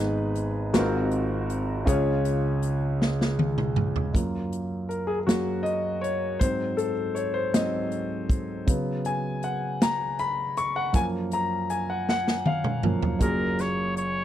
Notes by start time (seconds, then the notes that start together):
Already playing: G#1 G#2 B3 D#4 G#4 B4
0.35 closed hi-hat
0.73 G#1 G#2 B3 F4 F#4 A#4, snare, closed hi-hat
0.79 C4
1.11 closed hi-hat
1.50 closed hi-hat
1.85 C#2 C#3 C#4 F4 G#4 C#5, kick, closed hi-hat
2.25 closed hi-hat
2.62 closed hi-hat
3.02 snare
3.21 snare
3.39 high tom
3.58 mid tom
3.76 mid tom
3.96 floor tom
4.13 F#2 A#3 F4, kick, closed hi-hat
4.53 closed hi-hat
4.89 A#4, closed hi-hat
5.07 G#4
5.20 G#4
5.27 F#2 F#3 A#3 F#4, snare, closed hi-hat
5.63 D#5, closed hi-hat
6.01 C#5, closed hi-hat
6.39 G#2 F#3 C4 C5, kick, closed hi-hat
6.77 A4, closed hi-hat
7.15 C#5, closed hi-hat
7.34 C5
7.54 G#2 F#3 C4 D#5, snare, closed hi-hat
7.92 closed hi-hat
8.30 kick, closed hi-hat
8.66 C#3 F#3 B3, kick, closed hi-hat
9.05 G#5, closed hi-hat
9.43 F#5, closed hi-hat
9.82 A#5, snare, closed hi-hat
10.19 B5, closed hi-hat
10.57 C#6, closed hi-hat
10.76 F#5
10.93 F#2 F3 A#3 G#5, kick, closed hi-hat
11.32 A#5, closed hi-hat
11.70 G#5, closed hi-hat
11.90 F#5
12.09 F#5, snare
12.28 snare
12.46 F5, high tom
12.64 mid tom
12.83 F#2 F3 A#3, mid tom
13.02 floor tom
13.19 F#1 F#2 A#3 F4 F#4 G#4 A#4, kick, closed hi-hat
13.59 C#5, snare, closed hi-hat
13.97 C#5, closed hi-hat